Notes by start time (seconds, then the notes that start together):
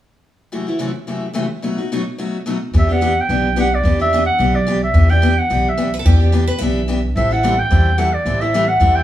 0.52 F#2 C3 E3 A3 E4 F#4
0.67 E3 A3 E4 F#4
0.79 F#2 C3 E3 A3 E4 F#4
1.07 F#2 C3 E3 A3 E4 F#4
1.33 F#2 C3 E3 A3 E4 F#4
1.62 B2 F#3 A3 D#4 F#4
1.78 A3 D#4 F#4
1.92 B2 F#3 A3 D#4 F#4
2.18 B2 F#3 A3 D#4 F#4
2.46 B2 F#3 A3 D#4 F#4
2.74 E2 E3 B3 D4 G4
2.79 E5
2.89 B3 D4 G4 F#5
3.01 E3 B3 D4 G4
3.21 G5
3.29 B1 E3 B3 D4 G4
3.56 E3 B3 D4 G4
3.60 F#5
3.75 D5
3.84 E2 E3 B3 D4 G4
3.99 B3 D4 G4 E5
4.13 E3 B3 D4 G4
4.26 F#5
4.38 B1 E3 B3 D4 G4
4.55 D5
4.67 E3 B3 D4 G4
4.84 E5
4.94 E2 E3 B3 D4 G4
5.09 B3 D4 G4 G5
5.22 E3 B3 D4 G4
5.39 F#5
5.50 B1 E3 B3 D4 G4
5.69 E5
5.78 E3 B3 D4 G4
5.94 B4
5.99 A4
6.04 E2 E3 B3 D4 G4
6.20 B3 D4 G4
6.32 E3 B3 D4 G4
6.47 B4
6.59 B1 E3 B3 D4 E5
6.63 G4
6.88 E3 B3 D4 G4
7.16 A1 E3 G3 C4 E4 A4 E5
7.31 C4 E4 A4 F#5
7.43 E3 G3 C4 E4 A4
7.59 G5
7.70 E2 E3 G3 C4 E4 A4
7.98 E3 G3 C4 E4 A4 F#5
8.13 D5
8.26 A1 E3 G3 C4 E4 A4
8.41 C4 E4 A4 E5
8.54 E3 G3 C4 E4 A4
8.68 F#5
8.80 E2 E3 G3 C4 E4 A4
8.96 G5